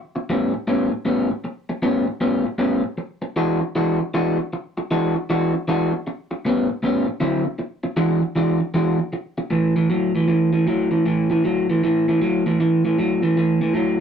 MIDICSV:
0, 0, Header, 1, 3, 480
1, 0, Start_track
1, 0, Tempo, 384369
1, 368, Time_signature, 4, 2, 24, 8
1, 17487, End_track
2, 0, Start_track
2, 0, Title_t, "Clean electric guitar"
2, 0, Program_c, 0, 27
2, 370, Note_on_c, 0, 45, 83
2, 371, Note_on_c, 0, 55, 92
2, 379, Note_on_c, 0, 59, 81
2, 383, Note_on_c, 0, 61, 88
2, 659, Note_off_c, 0, 61, 0
2, 660, Note_off_c, 0, 59, 0
2, 669, Note_off_c, 0, 55, 0
2, 676, Note_off_c, 0, 45, 0
2, 842, Note_on_c, 0, 45, 79
2, 846, Note_on_c, 0, 55, 96
2, 849, Note_on_c, 0, 59, 97
2, 854, Note_on_c, 0, 61, 100
2, 1130, Note_off_c, 0, 61, 0
2, 1135, Note_off_c, 0, 59, 0
2, 1139, Note_off_c, 0, 55, 0
2, 1151, Note_off_c, 0, 45, 0
2, 1313, Note_on_c, 0, 45, 94
2, 1318, Note_on_c, 0, 55, 91
2, 1326, Note_on_c, 0, 59, 98
2, 1327, Note_on_c, 0, 61, 95
2, 1619, Note_off_c, 0, 61, 0
2, 1624, Note_off_c, 0, 59, 0
2, 1627, Note_off_c, 0, 45, 0
2, 1629, Note_off_c, 0, 55, 0
2, 2277, Note_on_c, 0, 45, 78
2, 2284, Note_on_c, 0, 55, 84
2, 2287, Note_on_c, 0, 59, 91
2, 2293, Note_on_c, 0, 61, 99
2, 2575, Note_off_c, 0, 61, 0
2, 2578, Note_off_c, 0, 59, 0
2, 2579, Note_off_c, 0, 55, 0
2, 2588, Note_off_c, 0, 45, 0
2, 2756, Note_on_c, 0, 45, 79
2, 2757, Note_on_c, 0, 55, 81
2, 2762, Note_on_c, 0, 59, 86
2, 2766, Note_on_c, 0, 61, 84
2, 3054, Note_off_c, 0, 61, 0
2, 3062, Note_off_c, 0, 59, 0
2, 3067, Note_off_c, 0, 45, 0
2, 3067, Note_off_c, 0, 55, 0
2, 3225, Note_on_c, 0, 45, 85
2, 3232, Note_on_c, 0, 55, 90
2, 3236, Note_on_c, 0, 59, 98
2, 3239, Note_on_c, 0, 61, 102
2, 3526, Note_off_c, 0, 61, 0
2, 3530, Note_off_c, 0, 59, 0
2, 3532, Note_off_c, 0, 55, 0
2, 3541, Note_off_c, 0, 45, 0
2, 4199, Note_on_c, 0, 52, 77
2, 4204, Note_on_c, 0, 56, 84
2, 4210, Note_on_c, 0, 62, 89
2, 4213, Note_on_c, 0, 66, 93
2, 4496, Note_off_c, 0, 66, 0
2, 4504, Note_off_c, 0, 62, 0
2, 4508, Note_off_c, 0, 52, 0
2, 4510, Note_off_c, 0, 56, 0
2, 4688, Note_on_c, 0, 52, 91
2, 4692, Note_on_c, 0, 56, 92
2, 4699, Note_on_c, 0, 62, 84
2, 4701, Note_on_c, 0, 66, 93
2, 4983, Note_off_c, 0, 66, 0
2, 4986, Note_off_c, 0, 62, 0
2, 4992, Note_off_c, 0, 52, 0
2, 4994, Note_off_c, 0, 56, 0
2, 5169, Note_on_c, 0, 52, 83
2, 5173, Note_on_c, 0, 56, 89
2, 5178, Note_on_c, 0, 62, 95
2, 5181, Note_on_c, 0, 66, 105
2, 5470, Note_off_c, 0, 66, 0
2, 5471, Note_off_c, 0, 62, 0
2, 5472, Note_off_c, 0, 52, 0
2, 5474, Note_off_c, 0, 56, 0
2, 6130, Note_on_c, 0, 52, 85
2, 6134, Note_on_c, 0, 56, 87
2, 6140, Note_on_c, 0, 62, 98
2, 6147, Note_on_c, 0, 66, 88
2, 6431, Note_off_c, 0, 66, 0
2, 6432, Note_off_c, 0, 52, 0
2, 6433, Note_off_c, 0, 62, 0
2, 6434, Note_off_c, 0, 56, 0
2, 6614, Note_on_c, 0, 52, 91
2, 6618, Note_on_c, 0, 56, 84
2, 6622, Note_on_c, 0, 62, 98
2, 6626, Note_on_c, 0, 66, 107
2, 6907, Note_off_c, 0, 66, 0
2, 6914, Note_off_c, 0, 52, 0
2, 6915, Note_off_c, 0, 56, 0
2, 6918, Note_off_c, 0, 62, 0
2, 7091, Note_on_c, 0, 52, 96
2, 7100, Note_on_c, 0, 56, 85
2, 7104, Note_on_c, 0, 62, 105
2, 7112, Note_on_c, 0, 66, 112
2, 7392, Note_off_c, 0, 52, 0
2, 7393, Note_off_c, 0, 66, 0
2, 7396, Note_off_c, 0, 56, 0
2, 7398, Note_off_c, 0, 62, 0
2, 8056, Note_on_c, 0, 45, 79
2, 8067, Note_on_c, 0, 55, 86
2, 8070, Note_on_c, 0, 59, 106
2, 8077, Note_on_c, 0, 61, 88
2, 8339, Note_off_c, 0, 61, 0
2, 8344, Note_off_c, 0, 59, 0
2, 8349, Note_off_c, 0, 55, 0
2, 8353, Note_off_c, 0, 45, 0
2, 8525, Note_on_c, 0, 45, 82
2, 8536, Note_on_c, 0, 55, 80
2, 8538, Note_on_c, 0, 59, 88
2, 8544, Note_on_c, 0, 61, 98
2, 8821, Note_off_c, 0, 61, 0
2, 8827, Note_off_c, 0, 45, 0
2, 8828, Note_off_c, 0, 59, 0
2, 8833, Note_off_c, 0, 55, 0
2, 8995, Note_on_c, 0, 50, 94
2, 8999, Note_on_c, 0, 54, 91
2, 9005, Note_on_c, 0, 60, 92
2, 9007, Note_on_c, 0, 64, 104
2, 9288, Note_off_c, 0, 64, 0
2, 9292, Note_off_c, 0, 60, 0
2, 9295, Note_off_c, 0, 54, 0
2, 9301, Note_off_c, 0, 50, 0
2, 9948, Note_on_c, 0, 52, 94
2, 9952, Note_on_c, 0, 56, 87
2, 9954, Note_on_c, 0, 62, 90
2, 9966, Note_on_c, 0, 66, 93
2, 10248, Note_off_c, 0, 66, 0
2, 10254, Note_off_c, 0, 62, 0
2, 10257, Note_off_c, 0, 52, 0
2, 10259, Note_off_c, 0, 56, 0
2, 10434, Note_on_c, 0, 52, 91
2, 10441, Note_on_c, 0, 56, 82
2, 10445, Note_on_c, 0, 62, 94
2, 10452, Note_on_c, 0, 66, 94
2, 10722, Note_off_c, 0, 66, 0
2, 10731, Note_off_c, 0, 62, 0
2, 10733, Note_off_c, 0, 56, 0
2, 10740, Note_off_c, 0, 52, 0
2, 10915, Note_on_c, 0, 52, 88
2, 10918, Note_on_c, 0, 56, 101
2, 10925, Note_on_c, 0, 62, 89
2, 10928, Note_on_c, 0, 66, 110
2, 11211, Note_off_c, 0, 66, 0
2, 11216, Note_off_c, 0, 62, 0
2, 11221, Note_off_c, 0, 52, 0
2, 11222, Note_off_c, 0, 56, 0
2, 11870, Note_on_c, 0, 45, 78
2, 11883, Note_on_c, 0, 52, 81
2, 12148, Note_off_c, 0, 45, 0
2, 12154, Note_off_c, 0, 52, 0
2, 12187, Note_on_c, 0, 45, 70
2, 12193, Note_on_c, 0, 52, 81
2, 12339, Note_off_c, 0, 45, 0
2, 12342, Note_off_c, 0, 52, 0
2, 12360, Note_on_c, 0, 45, 73
2, 12360, Note_on_c, 0, 54, 87
2, 12633, Note_off_c, 0, 45, 0
2, 12633, Note_off_c, 0, 54, 0
2, 12672, Note_on_c, 0, 45, 66
2, 12682, Note_on_c, 0, 52, 81
2, 12822, Note_off_c, 0, 45, 0
2, 12827, Note_off_c, 0, 52, 0
2, 12836, Note_on_c, 0, 45, 86
2, 12841, Note_on_c, 0, 52, 96
2, 13112, Note_off_c, 0, 45, 0
2, 13114, Note_off_c, 0, 52, 0
2, 13146, Note_on_c, 0, 45, 69
2, 13146, Note_on_c, 0, 52, 82
2, 13300, Note_off_c, 0, 45, 0
2, 13300, Note_off_c, 0, 52, 0
2, 13321, Note_on_c, 0, 45, 88
2, 13330, Note_on_c, 0, 54, 86
2, 13595, Note_off_c, 0, 45, 0
2, 13600, Note_off_c, 0, 54, 0
2, 13623, Note_on_c, 0, 45, 74
2, 13631, Note_on_c, 0, 52, 67
2, 13779, Note_off_c, 0, 45, 0
2, 13783, Note_off_c, 0, 52, 0
2, 13805, Note_on_c, 0, 45, 82
2, 13811, Note_on_c, 0, 52, 82
2, 14078, Note_off_c, 0, 45, 0
2, 14081, Note_off_c, 0, 52, 0
2, 14110, Note_on_c, 0, 45, 70
2, 14121, Note_on_c, 0, 52, 76
2, 14263, Note_off_c, 0, 45, 0
2, 14269, Note_off_c, 0, 52, 0
2, 14285, Note_on_c, 0, 45, 67
2, 14298, Note_on_c, 0, 54, 92
2, 14559, Note_off_c, 0, 45, 0
2, 14566, Note_off_c, 0, 54, 0
2, 14605, Note_on_c, 0, 45, 72
2, 14610, Note_on_c, 0, 52, 82
2, 14752, Note_off_c, 0, 45, 0
2, 14754, Note_off_c, 0, 52, 0
2, 14778, Note_on_c, 0, 45, 79
2, 14782, Note_on_c, 0, 52, 96
2, 15046, Note_off_c, 0, 45, 0
2, 15048, Note_off_c, 0, 52, 0
2, 15088, Note_on_c, 0, 45, 79
2, 15095, Note_on_c, 0, 52, 90
2, 15234, Note_off_c, 0, 45, 0
2, 15238, Note_off_c, 0, 52, 0
2, 15251, Note_on_c, 0, 45, 88
2, 15256, Note_on_c, 0, 54, 86
2, 15524, Note_off_c, 0, 45, 0
2, 15527, Note_off_c, 0, 54, 0
2, 15562, Note_on_c, 0, 45, 76
2, 15564, Note_on_c, 0, 52, 79
2, 15712, Note_off_c, 0, 45, 0
2, 15713, Note_off_c, 0, 52, 0
2, 15735, Note_on_c, 0, 45, 77
2, 15739, Note_on_c, 0, 52, 92
2, 16007, Note_off_c, 0, 45, 0
2, 16009, Note_off_c, 0, 52, 0
2, 16041, Note_on_c, 0, 45, 78
2, 16047, Note_on_c, 0, 52, 78
2, 16193, Note_off_c, 0, 45, 0
2, 16196, Note_off_c, 0, 52, 0
2, 16216, Note_on_c, 0, 45, 76
2, 16223, Note_on_c, 0, 54, 81
2, 16488, Note_off_c, 0, 45, 0
2, 16492, Note_off_c, 0, 54, 0
2, 16515, Note_on_c, 0, 45, 67
2, 16521, Note_on_c, 0, 52, 77
2, 16670, Note_off_c, 0, 45, 0
2, 16674, Note_off_c, 0, 52, 0
2, 16698, Note_on_c, 0, 45, 85
2, 16703, Note_on_c, 0, 52, 95
2, 16971, Note_off_c, 0, 45, 0
2, 16973, Note_off_c, 0, 52, 0
2, 16997, Note_on_c, 0, 45, 80
2, 17003, Note_on_c, 0, 52, 76
2, 17145, Note_off_c, 0, 45, 0
2, 17156, Note_off_c, 0, 52, 0
2, 17160, Note_on_c, 0, 45, 76
2, 17171, Note_on_c, 0, 54, 83
2, 17443, Note_off_c, 0, 45, 0
2, 17448, Note_off_c, 0, 54, 0
2, 17487, End_track
3, 0, Start_track
3, 0, Title_t, "Muted clean electric guitar strokes"
3, 196, Note_on_c, 9, 29, 51
3, 321, Note_off_c, 9, 29, 0
3, 674, Note_on_c, 9, 29, 61
3, 799, Note_off_c, 9, 29, 0
3, 1145, Note_on_c, 9, 29, 54
3, 1270, Note_off_c, 9, 29, 0
3, 1634, Note_on_c, 9, 29, 51
3, 1759, Note_off_c, 9, 29, 0
3, 1800, Note_on_c, 9, 29, 47
3, 1925, Note_off_c, 9, 29, 0
3, 2115, Note_on_c, 9, 29, 56
3, 2240, Note_off_c, 9, 29, 0
3, 2590, Note_on_c, 9, 29, 53
3, 2715, Note_off_c, 9, 29, 0
3, 3069, Note_on_c, 9, 29, 50
3, 3193, Note_off_c, 9, 29, 0
3, 3541, Note_on_c, 9, 29, 52
3, 3666, Note_off_c, 9, 29, 0
3, 3717, Note_on_c, 9, 29, 48
3, 3842, Note_off_c, 9, 29, 0
3, 4019, Note_on_c, 9, 29, 51
3, 4144, Note_off_c, 9, 29, 0
3, 4511, Note_on_c, 9, 29, 53
3, 4636, Note_off_c, 9, 29, 0
3, 4998, Note_on_c, 9, 29, 55
3, 5123, Note_off_c, 9, 29, 0
3, 5485, Note_on_c, 9, 29, 58
3, 5610, Note_off_c, 9, 29, 0
3, 5656, Note_on_c, 9, 29, 50
3, 5781, Note_off_c, 9, 29, 0
3, 5963, Note_on_c, 9, 29, 59
3, 6088, Note_off_c, 9, 29, 0
3, 6446, Note_on_c, 9, 29, 54
3, 6571, Note_off_c, 9, 29, 0
3, 6922, Note_on_c, 9, 29, 65
3, 7047, Note_off_c, 9, 29, 0
3, 7408, Note_on_c, 9, 29, 61
3, 7533, Note_off_c, 9, 29, 0
3, 7578, Note_on_c, 9, 29, 53
3, 7703, Note_off_c, 9, 29, 0
3, 7881, Note_on_c, 9, 29, 50
3, 8006, Note_off_c, 9, 29, 0
3, 8354, Note_on_c, 9, 29, 52
3, 8479, Note_off_c, 9, 29, 0
3, 8836, Note_on_c, 9, 29, 59
3, 8961, Note_off_c, 9, 29, 0
3, 9303, Note_on_c, 9, 29, 56
3, 9428, Note_off_c, 9, 29, 0
3, 9472, Note_on_c, 9, 29, 49
3, 9596, Note_off_c, 9, 29, 0
3, 9785, Note_on_c, 9, 29, 53
3, 9909, Note_off_c, 9, 29, 0
3, 10263, Note_on_c, 9, 29, 57
3, 10388, Note_off_c, 9, 29, 0
3, 10737, Note_on_c, 9, 29, 59
3, 10861, Note_off_c, 9, 29, 0
3, 11226, Note_on_c, 9, 29, 56
3, 11351, Note_off_c, 9, 29, 0
3, 11396, Note_on_c, 9, 29, 53
3, 11521, Note_off_c, 9, 29, 0
3, 11710, Note_on_c, 9, 29, 48
3, 11835, Note_off_c, 9, 29, 0
3, 17487, End_track
0, 0, End_of_file